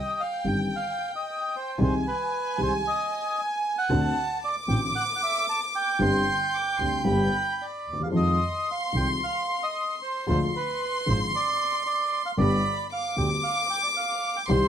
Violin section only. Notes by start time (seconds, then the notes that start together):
Already playing: G5
1.79 G#5
3.89 A5
4.43 D6
6.01 C6
6.53 D6
6.79 C6
7.06 B5
8.14 C6
10.26 C6
12.39 B5
12.92 D6
14.48 C6